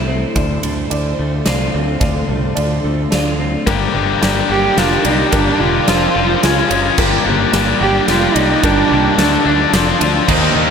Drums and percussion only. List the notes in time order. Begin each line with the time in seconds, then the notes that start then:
0.36 kick, ride
0.63 ride
0.91 ride
1.46 snare, ride
2.01 kick, ride
2.57 ride
3.12 snare, ride
3.67 kick, ride
4.23 snare, ride
4.78 snare, ride
5.05 ride
5.32 kick, ride
5.88 snare, ride
6.43 snare, ride
6.71 ride
6.98 kick, crash
7.53 snare, ride
8.08 snare, ride
8.36 ride
8.63 kick, ride
9.19 snare, ride
9.74 snare, ride
10.01 ride
10.29 kick, crash